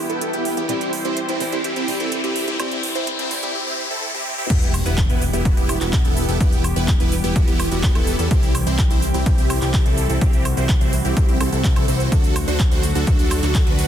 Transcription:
Already playing: E3 G3 B3 E4 G4 B4 G5, riser
0.10 E1 B3 E4 A4, closed hi-hat
0.21 closed hi-hat
0.33 E1 B3 E4 G4, closed hi-hat
0.45 open hi-hat
0.57 E2 B3 E4 G4, closed hi-hat
0.68 C2 E3 G3 C4 E4 G4 C5, closed hi-hat
0.81 closed hi-hat
0.93 open hi-hat
1.05 C2 C4 E4 C5, closed hi-hat
1.17 closed hi-hat
1.29 C2 C4 E4 C5, closed hi-hat
1.40 E3 G3 C4 E4, open hi-hat
1.52 C2 C4 E4 G4, closed hi-hat
1.64 C2 C4 E4 G4, closed hi-hat
1.76 C2 C4 E4 G4, closed hi-hat
1.87 E3 G3 C4 E4, open hi-hat
2.00 C2 C4 E4 A4, closed hi-hat
2.12 closed hi-hat
2.24 C2 C4 E4 G4, closed hi-hat
2.36 open hi-hat
2.48 C2 C4 E4 G4, closed hi-hat
2.58 C2 E3 G3 C4 E4 G4, closed hi-hat, high woodblock
2.71 closed hi-hat
2.83 open hi-hat
2.95 C2 C4 E4 C5, closed hi-hat
3.07 closed hi-hat
3.19 C2 C4 E4 C5, closed hi-hat
3.30 E3 G3 C4 E4, open hi-hat
3.43 C2 C4 E4 G4, closed hi-hat
3.55 C4 E4 G4
3.67 C4 E4 G4
3.91 C4 E4 A4
4.14 C4 E4 G4
4.38 C4 E4 G4
4.50 E1 E3 G3 B3 E4 G4, kick, closed hi-hat, crash, impact, shaker
4.62 closed hi-hat, shaker
4.74 open hi-hat, high woodblock, shaker
4.86 E1 B3 E4 B4, closed hi-hat, shaker
4.98 kick, clap, closed hi-hat, shaker
5.10 E1 B3 E4 B4, closed hi-hat, shaker
5.21 open hi-hat, shaker
5.33 E1 B3 E4 G4, closed hi-hat, shaker
5.45 E1 B3 E4, kick, closed hi-hat, shaker
5.57 E1 B3 E4 G4, closed hi-hat, shaker
5.69 open hi-hat, high woodblock, shaker
5.81 E1 B3 E4 F#4, clap, closed hi-hat, shaker
5.93 kick, clap, closed hi-hat, shaker
6.05 E1 B3 E4 A4, closed hi-hat
6.17 open hi-hat, shaker
6.29 E1 B3 E4 A4, closed hi-hat, shaker
6.40 E1 B3 E4, kick, closed hi-hat, shaker
6.52 closed hi-hat, shaker
6.64 open hi-hat, high woodblock, shaker
6.76 E1 B3 E4 B4, closed hi-hat, shaker
6.88 kick, clap, closed hi-hat, shaker
7.00 E1 B3 E4 B4, closed hi-hat, shaker
7.12 open hi-hat, shaker
7.24 E1 B3 E4 G4, closed hi-hat, shaker
7.36 E1 B3 E4 F#4, kick, closed hi-hat, shaker
7.48 E1 B3 E4 G4, closed hi-hat, shaker
7.60 open hi-hat, high woodblock, shaker
7.71 E1 B3 E4 F#4, closed hi-hat, shaker
7.83 kick, clap, closed hi-hat, shaker
7.95 E1 B3 E4 A4, closed hi-hat, high woodblock
8.07 open hi-hat, shaker
8.19 E2 B3 E4 A4, closed hi-hat, shaker
8.31 C2 C4 E4 G4, kick, closed hi-hat, shaker
8.43 closed hi-hat, shaker
8.55 open hi-hat, high woodblock, shaker
8.67 C2 C4 E4 C5, closed hi-hat, shaker
8.79 kick, clap, closed hi-hat, shaker
8.90 C2 C4 E4 C5, closed hi-hat, shaker
9.02 open hi-hat, shaker
9.14 C2 C4 E4 G4, closed hi-hat, shaker
9.26 C2 C4 E4 G4, kick, closed hi-hat, shaker
9.38 C2 C4 E4 G4, closed hi-hat, shaker
9.50 open hi-hat, high woodblock, shaker
9.62 C2 C4 E4 G4, clap, closed hi-hat, shaker
9.74 kick, clap, closed hi-hat, shaker
9.86 C2 C4 E4 A4, closed hi-hat
9.98 open hi-hat, shaker
10.10 C2 C4 E4 A4, closed hi-hat, shaker
10.21 C2 C4 E4 F#4 G4, kick, closed hi-hat, shaker
10.33 closed hi-hat, shaker
10.45 open hi-hat, high woodblock, shaker
10.57 C2 C4 E4 C5, closed hi-hat, shaker
10.69 kick, clap, closed hi-hat, shaker
10.81 C2 C4 E4 C5, closed hi-hat, shaker
10.93 open hi-hat, shaker
11.05 C2 C4 E4 G4, closed hi-hat, shaker
11.17 C2 C4 E4 G4, kick, closed hi-hat, shaker
11.29 C2 C4 E4 G4, closed hi-hat, shaker
11.41 C2 C4 E4 A4, open hi-hat, high woodblock, shaker
11.52 C2 C4 E4 A4, closed hi-hat, shaker
11.64 kick, clap, closed hi-hat, shaker
11.76 C2 C4 E4 A4, closed hi-hat, high woodblock
11.88 C2 C4 E4 C5, open hi-hat, shaker
12.00 closed hi-hat, shaker
12.12 D2 D3 F#3 A3 D4 F#4 A4, kick, closed hi-hat, shaker
12.24 closed hi-hat, shaker
12.36 open hi-hat, ride, high woodblock, shaker
12.48 D2 D4 F#4 C5, closed hi-hat, shaker
12.60 kick, clap, closed hi-hat, shaker
12.71 D2 D4 F#4 C5, closed hi-hat, shaker
12.83 open hi-hat, ride, shaker
12.95 D2 D4 F#4 A4, closed hi-hat, shaker
13.07 D2 D4 F#4 A4, kick, closed hi-hat, shaker
13.19 D2 D4 F#4 A4, closed hi-hat, shaker
13.31 open hi-hat, ride, high woodblock, shaker
13.43 D2 D4 F#4 A4, clap, closed hi-hat, shaker
13.55 kick, clap, closed hi-hat, shaker
13.67 D2 D4 F#4 B4, closed hi-hat
13.79 open hi-hat, ride, shaker

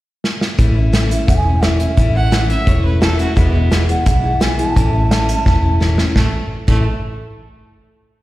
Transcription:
0.24 snare
0.41 snare
0.58 A1 A2 E3 A3 C#4 E4, kick, closed hi-hat
0.75 A3 C#4 E4
0.92 A2 E3 A3 C#4 E4, snare, closed hi-hat
1.10 A3 C#4 E4 E5, closed hi-hat
1.27 E1 E3 A3 C#4 E4 F#5, kick, closed hi-hat
1.37 G#5
1.45 A3 C#4 E4
1.62 A2 E3 A3 C#4 E4 E5, snare, closed hi-hat
1.79 A3 C#4 E4 E5, closed hi-hat
1.97 A1 A2 E3 A3 C#4 E4, kick, closed hi-hat
2.13 A3 C#4 E4 F#5
2.31 A2 E3 A3 C#4 E4, snare, closed hi-hat
2.48 A3 C#4 E4 E5, closed hi-hat
2.66 E1 E3 A3 C#4 E4 C#5, kick, closed hi-hat
2.83 A3 C#4 E4 B4
3.01 A2 E3 A3 C#4 E4 A4, snare, closed hi-hat
3.18 A3 C#4 E4 F#4, closed hi-hat
3.35 E1 E2 B2 E3 G#3 B3 E4, kick, closed hi-hat
3.53 E3 G#3 B3 E4
3.71 E2 B2 E3 G#3 B3 E4, snare, closed hi-hat
3.87 E3 G#3 B3 E4 F#5, closed hi-hat
4.05 B1 E3 G#3 B3 E4, kick, closed hi-hat
4.23 E3 G#3 B3 E4
4.40 E2 B2 E3 G#3 B3 E4 G#5, snare, closed hi-hat
4.57 E3 G#3 B3 E4 A5, closed hi-hat
4.76 A1 A2 E3 A3 C#4 E4, kick, closed hi-hat
4.93 A3 C#4 E4
5.11 A2 E3 A3 C#4 E4, snare, closed hi-hat
5.29 A3 C#4 E4, closed hi-hat
5.45 E1 E3 A3 C#4 E4, kick, snare
5.62 A3 C#4 E4
5.80 A2 E3 A3 C#4 E4, snare
5.97 A3 C#4 E4, snare
6.15 A1 A2 E3 A3 C#4 E4, kick, snare
6.67 A1 A2 E3 A3 C#4 E4, kick, crash

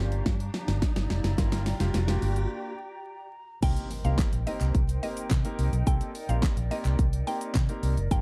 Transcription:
Already playing: A#3 D4 F4 G4 D5 F5 A#5, riser
0.00 G1
0.12 closed hi-hat
0.26 G2, kick, snare, closed hi-hat
0.40 closed hi-hat
0.54 snare
0.68 G1, snare, closed hi-hat
0.82 kick, snare, closed hi-hat
0.96 G1, snare, closed hi-hat
1.10 F1, snare
1.24 F#1, snare, closed hi-hat
1.38 G1 A#3 D4 F4 A#4 G5, kick, snare, closed hi-hat, shaker
1.52 snare, closed hi-hat, shaker
1.66 snare, open hi-hat, shaker
1.80 F1 A#3 D4 F4 G4, snare, closed hi-hat, shaker
1.94 F1, snare, closed hi-hat, shaker
2.08 A#3 D4 F4 G4, snare, closed hi-hat, shaker
2.22 G1, open hi-hat, shaker
2.36 closed hi-hat, shaker
3.62 C2 A#3 C4 D#4 G4 A#4 C5 G5, kick, closed hi-hat, crash, impact, shaker
3.77 closed hi-hat, shaker
3.91 open hi-hat, shaker
4.04 C2 A#3 C4 D#4 G4 A#4 F5, closed hi-hat, shaker
4.18 kick, snare, clap, closed hi-hat, shaker
4.33 A#1, closed hi-hat, shaker
4.47 A#3 C4 D#4 G4 A#4 D#5, open hi-hat, shaker
4.61 C2, clap, closed hi-hat, shaker
4.75 C2, kick, closed hi-hat, shaker
4.89 closed hi-hat, shaker
5.03 A#3 C4 D#4 G4 A#4 D#5, open hi-hat, shaker
5.17 closed hi-hat, shaker
5.30 C3, kick, snare, clap, closed hi-hat, shaker
5.45 A#3 C4 D#4 G4 A#4, closed hi-hat, shaker
5.59 C2, open hi-hat, shaker
5.73 B1, closed hi-hat, shaker
5.87 A#3 C4 D#4 G4 A4 D5 G5, kick, closed hi-hat, shaker
6.01 closed hi-hat, shaker
6.15 open hi-hat, shaker
6.29 A#1 A#3 C4 D#4 G4 A#4 F5, closed hi-hat, shaker
6.42 kick, snare, clap, closed hi-hat, shaker
6.57 A#1, closed hi-hat, shaker
6.71 A#3 C4 D#4 G4 A#4 D#5, open hi-hat, shaker
6.85 C2, clap, closed hi-hat, shaker
6.99 kick, closed hi-hat, shaker
7.13 closed hi-hat, shaker
7.27 A#3 C4 D#4 G4 A#4 G5, open hi-hat, shaker
7.41 closed hi-hat, shaker
7.54 C3, kick, snare, clap, closed hi-hat, shaker
7.69 A#3 C4 D#4 G4 A#4, closed hi-hat, shaker
7.83 C2, open hi-hat, shaker
7.97 F#1, closed hi-hat, shaker
8.11 G1 A#3 D4 F4 G4 A#4 F5 G5, kick, closed hi-hat, shaker

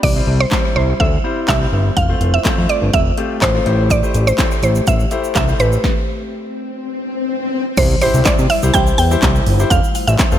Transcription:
0.03 C2 G3 E4 C5 D5, kick, crash
0.16 G3 C4 E4 C5
0.27 C2
0.40 C5
0.51 G3 C4 E4 C5, kick, snare, clap
0.76 C2 C5
1.00 D2 E5, kick
1.24 G3 C4 E4 C5
1.48 C2 E5, kick, snare, clap
1.61 G3 C4 E4 C5
1.73 G1
1.97 F1 A3 F4 F5, kick, closed hi-hat
2.09 A3 C4 F4 C5
2.21 F1, closed hi-hat
2.34 E5
2.45 F2 A3 C4 F4 C5, kick, snare, clap, closed hi-hat
2.58 F2
2.69 D5, closed hi-hat
2.82 G1
2.93 F1 E5, kick, closed hi-hat
3.17 A3 C4 F4 G4, closed hi-hat
3.42 A1 C5, kick, snare, clap, closed hi-hat
3.54 A3 C4 F4 C5
3.66 A1 A3 E4 G4 C5, closed hi-hat
3.90 D5, kick, closed hi-hat, shaker
4.03 A3 E4 G4 C5, shaker
4.14 A1, closed hi-hat, shaker
4.27 C5, shaker
4.38 A3 E4 G4 C5, kick, snare, clap, closed hi-hat, shaker
4.51 shaker
4.63 A1 C5, closed hi-hat, shaker
4.75 shaker
4.87 A1 E5, kick, closed hi-hat, shaker
5.00 shaker
5.11 A3 E4 G4 C5, closed hi-hat, shaker
5.24 shaker
5.35 C2 E5, kick, snare, clap, closed hi-hat, shaker
5.48 A3 E4 G4 C5, shaker
5.60 A1 B4, closed hi-hat, shaker
5.72 shaker
5.84 kick, snare, swell
7.77 C2 G3 E4 C5, kick, closed hi-hat, crash, impact, shaker
7.90 shaker
8.01 E4 G4 C5, open hi-hat, shaker
8.14 C2, shaker
8.25 C3 D5, kick, snare, clap, closed hi-hat, shaker
8.38 C3, shaker
8.50 E5, open hi-hat, shaker
8.62 C2 E4 G4 C5, shaker
8.74 C2 E4 G4 C5 G5, kick, closed hi-hat, shaker
8.87 shaker
8.98 E2 G5, open hi-hat, shaker
9.11 E4 G4 C5, shaker
9.22 C2, kick, snare, clap, closed hi-hat, shaker
9.35 shaker
9.46 G1, open hi-hat, shaker
9.59 E4 G4 C5, shaker
9.70 F1 A3 F4 F5, kick, closed hi-hat, shaker
9.84 shaker
9.95 open hi-hat, shaker
10.07 A1 E5, shaker
10.19 kick, snare, clap, closed hi-hat, shaker
10.32 F1 F4 A4 C5, shaker

